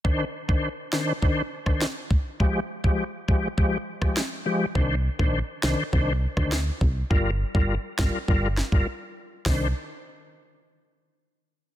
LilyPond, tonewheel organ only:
\new Staff \with { instrumentName = "Tonewheel organ" } { \time 4/4 \key c \minor \tempo 4 = 102 <ees d' c''>16 r8 <ees d' c''>16 r8 <ees d' c''>16 r16 <ees d' c''>16 r8 <ees d' c''>16 r4 | <f aes g'>16 r8 <f aes g'>16 r8 <f aes g'>16 r16 <f aes g'>16 r8 <f aes g'>16 r8 <f aes g'>16 r16 | <ees d' c''>16 r8 <ees d' c''>16 r8 <ees d' c''>16 r16 <ees d' c''>16 r8 <ees d' c''>16 r4 | <g f' bes'>16 r8 <g f' bes'>16 r8 <g f' bes'>16 r16 <g f' bes'>16 r8 <g f' bes'>16 r4 |
<ees d' c''>8 r2. r8 | }